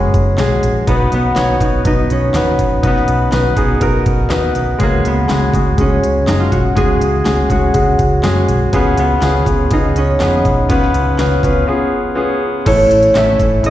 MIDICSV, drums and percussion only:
0, 0, Header, 1, 2, 480
1, 0, Start_track
1, 0, Tempo, 490838
1, 855, Time_signature, 4, 2, 24, 8
1, 13398, End_track
2, 0, Start_track
2, 0, Title_t, "Drums"
2, 137, Note_on_c, 9, 36, 74
2, 139, Note_on_c, 9, 42, 62
2, 235, Note_off_c, 9, 36, 0
2, 236, Note_off_c, 9, 42, 0
2, 371, Note_on_c, 9, 39, 75
2, 373, Note_on_c, 9, 38, 93
2, 374, Note_on_c, 9, 54, 81
2, 377, Note_on_c, 9, 42, 79
2, 469, Note_off_c, 9, 39, 0
2, 471, Note_off_c, 9, 38, 0
2, 471, Note_off_c, 9, 54, 0
2, 475, Note_off_c, 9, 42, 0
2, 616, Note_on_c, 9, 42, 66
2, 714, Note_off_c, 9, 42, 0
2, 855, Note_on_c, 9, 42, 79
2, 856, Note_on_c, 9, 36, 94
2, 953, Note_off_c, 9, 42, 0
2, 954, Note_off_c, 9, 36, 0
2, 1095, Note_on_c, 9, 42, 57
2, 1193, Note_off_c, 9, 42, 0
2, 1331, Note_on_c, 9, 39, 78
2, 1333, Note_on_c, 9, 38, 100
2, 1333, Note_on_c, 9, 42, 78
2, 1337, Note_on_c, 9, 54, 68
2, 1429, Note_off_c, 9, 39, 0
2, 1431, Note_off_c, 9, 38, 0
2, 1431, Note_off_c, 9, 42, 0
2, 1434, Note_off_c, 9, 54, 0
2, 1570, Note_on_c, 9, 36, 78
2, 1575, Note_on_c, 9, 42, 74
2, 1668, Note_off_c, 9, 36, 0
2, 1672, Note_off_c, 9, 42, 0
2, 1809, Note_on_c, 9, 42, 79
2, 1812, Note_on_c, 9, 36, 86
2, 1907, Note_off_c, 9, 42, 0
2, 1909, Note_off_c, 9, 36, 0
2, 2056, Note_on_c, 9, 42, 59
2, 2154, Note_off_c, 9, 42, 0
2, 2286, Note_on_c, 9, 54, 81
2, 2291, Note_on_c, 9, 39, 74
2, 2292, Note_on_c, 9, 38, 94
2, 2296, Note_on_c, 9, 42, 89
2, 2384, Note_off_c, 9, 54, 0
2, 2388, Note_off_c, 9, 39, 0
2, 2390, Note_off_c, 9, 38, 0
2, 2394, Note_off_c, 9, 42, 0
2, 2532, Note_on_c, 9, 36, 68
2, 2532, Note_on_c, 9, 42, 62
2, 2630, Note_off_c, 9, 36, 0
2, 2630, Note_off_c, 9, 42, 0
2, 2772, Note_on_c, 9, 36, 93
2, 2773, Note_on_c, 9, 42, 75
2, 2870, Note_off_c, 9, 36, 0
2, 2871, Note_off_c, 9, 42, 0
2, 2895, Note_on_c, 9, 38, 29
2, 2993, Note_off_c, 9, 38, 0
2, 3011, Note_on_c, 9, 42, 66
2, 3108, Note_off_c, 9, 42, 0
2, 3249, Note_on_c, 9, 39, 74
2, 3250, Note_on_c, 9, 38, 96
2, 3251, Note_on_c, 9, 42, 81
2, 3251, Note_on_c, 9, 54, 73
2, 3346, Note_off_c, 9, 39, 0
2, 3348, Note_off_c, 9, 38, 0
2, 3348, Note_off_c, 9, 42, 0
2, 3349, Note_off_c, 9, 54, 0
2, 3487, Note_on_c, 9, 36, 82
2, 3490, Note_on_c, 9, 42, 66
2, 3585, Note_off_c, 9, 36, 0
2, 3588, Note_off_c, 9, 42, 0
2, 3726, Note_on_c, 9, 42, 81
2, 3729, Note_on_c, 9, 36, 81
2, 3824, Note_off_c, 9, 42, 0
2, 3827, Note_off_c, 9, 36, 0
2, 3970, Note_on_c, 9, 42, 57
2, 3972, Note_on_c, 9, 36, 82
2, 4068, Note_off_c, 9, 42, 0
2, 4070, Note_off_c, 9, 36, 0
2, 4206, Note_on_c, 9, 39, 74
2, 4207, Note_on_c, 9, 54, 81
2, 4208, Note_on_c, 9, 38, 91
2, 4212, Note_on_c, 9, 42, 77
2, 4304, Note_off_c, 9, 39, 0
2, 4304, Note_off_c, 9, 54, 0
2, 4305, Note_off_c, 9, 38, 0
2, 4310, Note_off_c, 9, 42, 0
2, 4450, Note_on_c, 9, 42, 54
2, 4548, Note_off_c, 9, 42, 0
2, 4691, Note_on_c, 9, 42, 73
2, 4694, Note_on_c, 9, 36, 96
2, 4789, Note_off_c, 9, 42, 0
2, 4792, Note_off_c, 9, 36, 0
2, 4939, Note_on_c, 9, 42, 65
2, 5037, Note_off_c, 9, 42, 0
2, 5170, Note_on_c, 9, 54, 66
2, 5178, Note_on_c, 9, 39, 78
2, 5179, Note_on_c, 9, 38, 103
2, 5180, Note_on_c, 9, 42, 69
2, 5268, Note_off_c, 9, 54, 0
2, 5275, Note_off_c, 9, 39, 0
2, 5277, Note_off_c, 9, 38, 0
2, 5278, Note_off_c, 9, 42, 0
2, 5413, Note_on_c, 9, 36, 78
2, 5422, Note_on_c, 9, 42, 72
2, 5511, Note_off_c, 9, 36, 0
2, 5520, Note_off_c, 9, 42, 0
2, 5653, Note_on_c, 9, 42, 73
2, 5654, Note_on_c, 9, 36, 81
2, 5751, Note_off_c, 9, 42, 0
2, 5752, Note_off_c, 9, 36, 0
2, 5902, Note_on_c, 9, 42, 64
2, 6000, Note_off_c, 9, 42, 0
2, 6134, Note_on_c, 9, 54, 80
2, 6137, Note_on_c, 9, 39, 74
2, 6138, Note_on_c, 9, 38, 90
2, 6143, Note_on_c, 9, 42, 82
2, 6231, Note_off_c, 9, 54, 0
2, 6235, Note_off_c, 9, 39, 0
2, 6236, Note_off_c, 9, 38, 0
2, 6240, Note_off_c, 9, 42, 0
2, 6376, Note_on_c, 9, 36, 65
2, 6378, Note_on_c, 9, 42, 56
2, 6474, Note_off_c, 9, 36, 0
2, 6476, Note_off_c, 9, 42, 0
2, 6617, Note_on_c, 9, 36, 103
2, 6621, Note_on_c, 9, 42, 72
2, 6715, Note_off_c, 9, 36, 0
2, 6718, Note_off_c, 9, 42, 0
2, 6859, Note_on_c, 9, 42, 67
2, 6957, Note_off_c, 9, 42, 0
2, 7092, Note_on_c, 9, 54, 70
2, 7096, Note_on_c, 9, 39, 78
2, 7098, Note_on_c, 9, 38, 105
2, 7098, Note_on_c, 9, 42, 72
2, 7190, Note_off_c, 9, 54, 0
2, 7194, Note_off_c, 9, 39, 0
2, 7195, Note_off_c, 9, 38, 0
2, 7196, Note_off_c, 9, 42, 0
2, 7333, Note_on_c, 9, 36, 76
2, 7339, Note_on_c, 9, 42, 72
2, 7431, Note_off_c, 9, 36, 0
2, 7436, Note_off_c, 9, 42, 0
2, 7570, Note_on_c, 9, 42, 88
2, 7574, Note_on_c, 9, 36, 76
2, 7668, Note_off_c, 9, 42, 0
2, 7672, Note_off_c, 9, 36, 0
2, 7813, Note_on_c, 9, 42, 60
2, 7816, Note_on_c, 9, 36, 72
2, 7911, Note_off_c, 9, 42, 0
2, 7914, Note_off_c, 9, 36, 0
2, 8052, Note_on_c, 9, 39, 70
2, 8053, Note_on_c, 9, 38, 101
2, 8053, Note_on_c, 9, 54, 81
2, 8058, Note_on_c, 9, 42, 85
2, 8150, Note_off_c, 9, 39, 0
2, 8151, Note_off_c, 9, 38, 0
2, 8151, Note_off_c, 9, 54, 0
2, 8155, Note_off_c, 9, 42, 0
2, 8298, Note_on_c, 9, 42, 60
2, 8395, Note_off_c, 9, 42, 0
2, 8537, Note_on_c, 9, 42, 76
2, 8538, Note_on_c, 9, 36, 95
2, 8634, Note_off_c, 9, 42, 0
2, 8636, Note_off_c, 9, 36, 0
2, 8777, Note_on_c, 9, 42, 68
2, 8874, Note_off_c, 9, 42, 0
2, 9014, Note_on_c, 9, 39, 76
2, 9016, Note_on_c, 9, 38, 99
2, 9017, Note_on_c, 9, 42, 80
2, 9018, Note_on_c, 9, 54, 71
2, 9112, Note_off_c, 9, 39, 0
2, 9114, Note_off_c, 9, 38, 0
2, 9114, Note_off_c, 9, 42, 0
2, 9116, Note_off_c, 9, 54, 0
2, 9255, Note_on_c, 9, 36, 78
2, 9261, Note_on_c, 9, 42, 67
2, 9353, Note_off_c, 9, 36, 0
2, 9359, Note_off_c, 9, 42, 0
2, 9492, Note_on_c, 9, 42, 84
2, 9497, Note_on_c, 9, 36, 83
2, 9589, Note_off_c, 9, 42, 0
2, 9595, Note_off_c, 9, 36, 0
2, 9740, Note_on_c, 9, 42, 68
2, 9838, Note_off_c, 9, 42, 0
2, 9973, Note_on_c, 9, 54, 79
2, 9978, Note_on_c, 9, 39, 80
2, 9979, Note_on_c, 9, 38, 94
2, 9984, Note_on_c, 9, 42, 85
2, 10070, Note_off_c, 9, 54, 0
2, 10076, Note_off_c, 9, 39, 0
2, 10077, Note_off_c, 9, 38, 0
2, 10082, Note_off_c, 9, 42, 0
2, 10220, Note_on_c, 9, 36, 74
2, 10222, Note_on_c, 9, 42, 56
2, 10318, Note_off_c, 9, 36, 0
2, 10320, Note_off_c, 9, 42, 0
2, 10460, Note_on_c, 9, 42, 79
2, 10461, Note_on_c, 9, 36, 100
2, 10558, Note_off_c, 9, 42, 0
2, 10559, Note_off_c, 9, 36, 0
2, 10586, Note_on_c, 9, 38, 27
2, 10684, Note_off_c, 9, 38, 0
2, 10702, Note_on_c, 9, 42, 64
2, 10800, Note_off_c, 9, 42, 0
2, 10940, Note_on_c, 9, 39, 79
2, 10942, Note_on_c, 9, 38, 101
2, 10942, Note_on_c, 9, 54, 74
2, 10943, Note_on_c, 9, 42, 82
2, 11038, Note_off_c, 9, 39, 0
2, 11040, Note_off_c, 9, 38, 0
2, 11040, Note_off_c, 9, 42, 0
2, 11040, Note_off_c, 9, 54, 0
2, 11180, Note_on_c, 9, 36, 76
2, 11188, Note_on_c, 9, 42, 69
2, 11278, Note_off_c, 9, 36, 0
2, 11285, Note_off_c, 9, 42, 0
2, 12383, Note_on_c, 9, 36, 100
2, 12383, Note_on_c, 9, 42, 76
2, 12383, Note_on_c, 9, 49, 80
2, 12481, Note_off_c, 9, 36, 0
2, 12481, Note_off_c, 9, 42, 0
2, 12481, Note_off_c, 9, 49, 0
2, 12624, Note_on_c, 9, 42, 76
2, 12722, Note_off_c, 9, 42, 0
2, 12738, Note_on_c, 9, 42, 56
2, 12836, Note_off_c, 9, 42, 0
2, 12859, Note_on_c, 9, 54, 78
2, 12864, Note_on_c, 9, 39, 85
2, 12865, Note_on_c, 9, 38, 107
2, 12866, Note_on_c, 9, 42, 86
2, 12957, Note_off_c, 9, 54, 0
2, 12962, Note_off_c, 9, 39, 0
2, 12963, Note_off_c, 9, 38, 0
2, 12964, Note_off_c, 9, 42, 0
2, 13099, Note_on_c, 9, 36, 80
2, 13103, Note_on_c, 9, 42, 68
2, 13197, Note_off_c, 9, 36, 0
2, 13201, Note_off_c, 9, 42, 0
2, 13340, Note_on_c, 9, 42, 88
2, 13398, Note_off_c, 9, 42, 0
2, 13398, End_track
0, 0, End_of_file